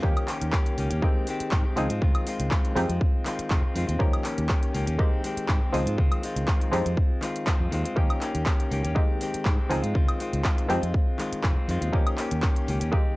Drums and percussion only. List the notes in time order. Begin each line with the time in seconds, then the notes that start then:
0.03 kick
0.17 closed hi-hat, high woodblock
0.28 clap, open hi-hat
0.42 closed hi-hat
0.53 kick, clap
0.66 closed hi-hat
0.78 open hi-hat
0.91 closed hi-hat
1.02 kick
1.27 open hi-hat
1.40 closed hi-hat
1.51 kick, clap
1.77 open hi-hat
1.90 closed hi-hat
2.02 kick
2.15 closed hi-hat, high woodblock
2.27 open hi-hat
2.40 closed hi-hat
2.51 kick, clap
2.65 closed hi-hat
2.76 open hi-hat
2.89 closed hi-hat
3.01 kick
3.25 clap, open hi-hat
3.39 closed hi-hat
3.50 kick, clap
3.76 open hi-hat
3.89 closed hi-hat
4.00 kick
4.13 closed hi-hat, high woodblock
4.24 clap, open hi-hat
4.38 closed hi-hat
4.49 kick, clap
4.63 closed hi-hat
4.74 open hi-hat
4.87 closed hi-hat
4.99 kick
5.24 open hi-hat
5.37 closed hi-hat
5.48 kick, clap
5.74 open hi-hat
5.87 closed hi-hat
5.98 kick
6.12 closed hi-hat, high woodblock
6.23 open hi-hat
6.36 closed hi-hat
6.48 kick, clap
6.61 closed hi-hat
6.73 open hi-hat
6.86 closed hi-hat
6.97 kick
7.22 clap, open hi-hat
7.36 closed hi-hat
7.47 kick, clap
7.72 open hi-hat
7.85 closed hi-hat
7.97 kick
8.10 closed hi-hat, high woodblock
8.21 clap, open hi-hat
8.35 closed hi-hat
8.46 kick, clap
8.60 closed hi-hat
8.72 open hi-hat
8.85 closed hi-hat
8.96 kick
9.21 open hi-hat
9.34 closed hi-hat
9.45 kick, clap
9.71 open hi-hat
9.84 closed hi-hat
9.95 kick
10.09 closed hi-hat, high woodblock
10.20 open hi-hat
10.33 closed hi-hat
10.44 kick, clap
10.58 closed hi-hat
10.70 open hi-hat
10.83 closed hi-hat
10.94 kick
11.19 clap, open hi-hat
11.33 closed hi-hat
11.43 kick, clap
11.69 open hi-hat
11.82 closed hi-hat
11.93 kick
12.07 closed hi-hat, high woodblock
12.18 clap, open hi-hat
12.31 closed hi-hat
12.42 kick, clap
12.56 closed hi-hat
12.68 open hi-hat
12.81 closed hi-hat
12.93 kick